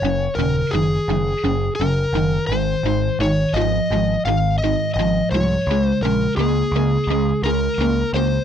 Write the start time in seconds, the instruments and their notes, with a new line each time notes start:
Already playing: electric slide guitar C#5
0.02 picked electric bass F#1, overdriven electric guitar F#2 C#3
0.35 picked electric bass D#1, electric slide guitar A#4
0.40 overdriven electric guitar F#2 C#3
0.71 picked electric bass F#1, overdriven electric guitar F#2 D#3, electric slide guitar G#4
1.08 picked electric bass F#1, overdriven electric guitar F#2 D#3
1.44 picked electric bass F#1, overdriven electric guitar F#2 C#3
1.76 electric slide guitar A#4
1.80 picked electric bass F#1, overdriven electric guitar F#2 C#3
2.13 picked electric bass F#1, overdriven electric guitar F#2 D#3
2.47 picked electric bass G#1, electric slide guitar C5
2.52 overdriven electric guitar G#2 D#3
2.83 picked electric bass G#1, overdriven electric guitar G#2 D#3
3.19 picked electric bass G#1, overdriven electric guitar G#2 D#3, electric slide guitar C#5
3.53 picked electric bass G#1, overdriven electric guitar G#2 F3, electric slide guitar D#5
3.90 picked electric bass G#1, overdriven electric guitar G#2 F3
4.25 picked electric bass G#1, overdriven electric guitar G#2 D#3, electric slide guitar F5
4.58 electric slide guitar D#5
4.64 overdriven electric guitar G#2 D#3
4.94 picked electric bass G#1, electric slide guitar D#5
4.99 overdriven electric guitar G#2 F3
5.31 picked electric bass C2, overdriven electric guitar G#2 F3, electric slide guitar C#5
5.67 picked electric bass C#2, overdriven electric guitar C#3
5.71 overdriven electric guitar G#3
5.82 electric slide guitar C5
6.01 picked electric bass A#1, overdriven electric guitar C#3 G#3, electric slide guitar A#4
6.37 picked electric bass C#2, overdriven electric guitar C#3 A#3, electric slide guitar G#4
6.72 picked electric bass C#2
6.76 overdriven electric guitar C#3 A#3
7.07 picked electric bass C#2, overdriven electric guitar C#3 G#3
7.43 picked electric bass C#2, overdriven electric guitar C#3 G#3, electric slide guitar A#4
7.78 picked electric bass C#2, overdriven electric guitar C#3 A#3
8.13 picked electric bass C#2, overdriven electric guitar C#3 A#3, electric slide guitar C5